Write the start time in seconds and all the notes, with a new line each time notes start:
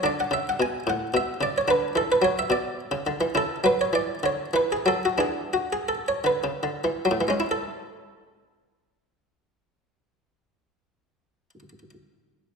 0.03 D3 D4 D5
0.20 F#5
0.31 C#3 E5
0.49 F#5
0.60 B2 G#5
0.87 A2 F#5
1.14 B2 E5
1.41 C#3 D5
1.58 C#5
1.68 D3 D4 B4
1.96 E3 A4
2.12 B4
2.22 F#3 C#5
2.39 E5
2.50 B2 D5
2.91 C#3
3.07 D3
3.21 E3
3.35 C#3 E4 A4
3.64 F#3 B4
3.81 C#5
3.93 E3 D5
4.23 D3 C#5
4.54 E3 B4
4.72 G#4
4.86 F#3 A4
5.05 F#4
5.18 E3 D4 G#4
5.54 F#4
5.73 G#4
5.89 A4
6.08 C#5
6.24 D3 B4
6.44 C#3
6.63 D3
6.84 E3
7.05 F#3
7.11 A2
7.21 E3
7.28 G#3 C#4
7.40 E4
7.51 A4